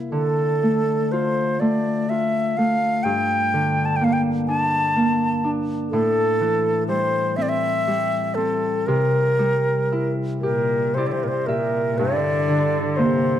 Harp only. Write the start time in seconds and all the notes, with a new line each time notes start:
Already playing: C3 G3 A#3 E4
0.12 D3
0.63 A3
1.13 F4
1.61 A3
2.10 F4
2.58 A3
3.05 G2
3.54 D3
4.01 A#3
4.48 D4
4.96 A#3
5.44 D4
5.93 A2
6.41 E3
6.89 G3
7.38 C4
7.87 G3
8.37 C4
8.88 C3
9.39 G3
9.92 E4
10.43 G4
10.97 E4 D5
11.48 G4 E5
11.99 G2
12.49 D3
12.98 A#3